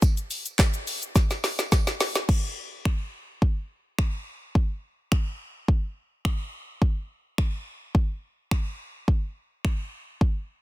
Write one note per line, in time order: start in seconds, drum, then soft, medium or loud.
0.02 kick loud
0.02 closed hi-hat medium
0.02 tambourine medium
0.02 shaker medium
0.17 closed hi-hat medium
0.17 shaker medium
0.31 open hi-hat medium
0.31 tambourine medium
0.31 shaker medium
0.46 closed hi-hat medium
0.46 tambourine soft
0.46 shaker medium
0.59 kick loud
0.59 snare loud
0.59 clap loud
0.59 closed hi-hat medium
0.59 tambourine medium
0.59 shaker medium
0.74 closed hi-hat medium
0.74 shaker medium
0.87 open hi-hat medium
0.87 tambourine soft
0.87 shaker medium
1.02 closed hi-hat medium
1.02 shaker medium
1.16 kick loud
1.16 snare medium
1.16 closed hi-hat medium
1.16 tambourine soft
1.16 shaker medium
1.31 snare medium
1.31 closed hi-hat soft
1.31 tambourine soft
1.31 shaker medium
1.44 snare medium
1.44 open hi-hat medium
1.44 tambourine medium
1.44 shaker medium
1.59 snare medium
1.59 closed hi-hat medium
1.59 tambourine soft
1.59 shaker medium
1.72 kick loud
1.72 snare medium
1.72 closed hi-hat medium
1.72 tambourine medium
1.72 shaker medium
1.87 snare medium
1.87 closed hi-hat medium
1.87 tambourine soft
1.87 shaker medium
2.00 snare loud
2.00 open hi-hat medium
2.00 shaker medium
2.15 snare loud
2.15 shaker medium
2.29 kick loud
2.29 crash medium
2.85 finger snap loud
2.85 kick loud
3.42 kick loud
3.99 finger snap loud
3.99 kick loud
4.55 kick loud
5.12 finger snap loud
5.12 kick loud
5.68 kick loud
6.25 finger snap loud
6.25 kick loud
6.82 kick loud
7.38 finger snap loud
7.38 kick loud
7.95 kick loud
8.51 finger snap loud
8.51 kick loud
9.08 kick loud
9.65 finger snap loud
9.65 kick loud
10.21 kick loud